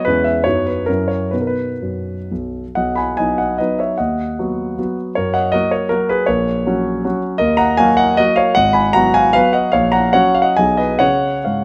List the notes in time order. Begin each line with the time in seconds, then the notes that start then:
0.05 E2 G#3 C#4 E4 B4
0.24 E5
0.44 F#2 F#3 B3 D#4 C#5
0.66 B4
0.86 F#2 F#3 C#4 E4 A#4
1.08 C#5
1.31 B2 B3 D#4 B4
1.41 A#4
1.47 B4
1.82 F#2
2.32 B1
2.75 B1 D#5 F#5
2.96 G#5 B5
3.17 F#3 B3 D#4 D#5 G#5
3.38 D#5 F#5
3.58 F#3 B3 D#4 B4 D#5
3.79 C#5 E5
3.98 D#2 D#5 F#5
4.39 F#3 B3 F#4
4.79 F#3 B3 F#4
5.15 F#2 A#4 C#5
5.34 D#5 F#5
5.52 F#3 A#3 F#4 A#4 D#5
5.71 A#4 C#5
5.89 F#3 A#3 F#4 A#4
6.09 G#4 B4
6.26 A#1 A#4 C#5
6.67 F#3 C#4 F#4
7.04 F#3 C#4 F#4
7.38 D#2 A#4 D#5
7.57 F#5 A#5
7.77 F#3 A#3 F#4 F5 G#5
7.97 D#5 F#5
8.17 F#3 A#3 F#4 A#4 D#5
8.36 C#5 F5
8.55 G#1 D#5 F#5
8.73 G#5 B5
8.93 F#3 B3 F#4 F#5 A#5
9.14 F5 G#5
9.33 F#3 B3 F#4 B4 F5
9.53 D#5 F#5
9.72 A#1 C#5 F5
9.92 F#5 A#5
10.13 F#3 C#4 F#4 C#5 F#5
10.35 F5
10.42 D#5 F#5
10.57 B1 F#3 D#4 G#4 D#5 G#5
10.77 B4 D#5
10.99 C#3 C#4 G#4 C#5 F#5
11.44 G#2 C#5 F5